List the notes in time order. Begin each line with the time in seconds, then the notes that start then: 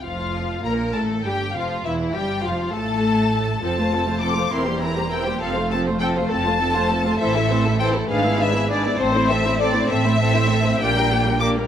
0.03 F1 F2 F3 F4 F5
0.64 A#1 A#2 A#3 A#4 A#5
0.93 A1 A2 A3 A4 A5
1.24 G1 G2 G3 G4 G5
1.54 F1 F2 F3 F4 F5
1.84 E1 E2 E3 E4 E5
2.13 G1 G2 G3 G4 G5
2.44 F1 F2 F3 F4 F5
2.73 A1 A2 A3 A4 A5
3.62 F1 F2 F3 C4 A4 A5
3.78 A3 F4 C5
3.92 F3 C4 A4
4.06 A3 F4 C5
4.22 F3 C4 A4 D6
4.36 A3 F4 C5
4.51 E1 E2 E3 C4 E4 A#4 C6
4.66 G3 A#3 G4 C5
4.80 E3 C4 E4 A#4 A#5
4.96 G3 A#3 G4 C5
5.11 E3 C4 E4 A#4 G5
5.24 G3 A#3 G4 C5
5.40 F1 F2 F3 C4 A4 F5
5.55 A3 F4 C5
5.71 F3 C4 A4 A5
5.86 A3 F4 C5
6.00 F3 C4 A4 G5
6.16 A3 F4 C5
6.29 F1 F2 F3 C4 A4 A5
6.44 A3 F4 C5
6.59 F3 C4 A4
6.74 A3 F4 C5
6.89 F3 C4 A4
7.04 A3 F4 C5
7.19 A1 A2 E3 C4 A4 C5 E5
7.34 A3 E4 A4
7.50 E3 C4 A4 C5
7.65 A3 E4 A4
7.79 E3 C4 A4 C5 G5
7.94 A3 E4 A4
8.08 G#1 G#2 G#3 D4 G#4 B4 F5
8.23 B3 E4 G#4
8.39 G#3 D4 G#4 B4 E5
8.53 B3 E4 G#4
8.68 G#3 D4 G#4 B4 D5
8.83 B3 E4 G#4
8.97 A1 A2 A3 C4 A4 C5
9.14 A3 C4 E4 C5
9.28 A3 C4 A4 E5
9.43 A3 C4 E4 C5
9.58 A3 C4 A4 D5
9.73 A3 C4 E4 C5
9.88 A1 A2 A3 C4 A4 E5
10.04 A3 C4 E4 C5
10.20 A3 C4 A4
10.34 A3 C4 E4 C5
10.49 A3 C4 A4
10.63 A3 C4 E4 C5
10.79 A#1 A#2 A#3 D4 G4 G5
10.95 G3 A#3 D4 A#4
11.10 A#3 D4 G4
11.25 G3 A#3 D4 A#4
11.40 A#3 D4 G4 D6
11.56 G3 A#3 D4 A#4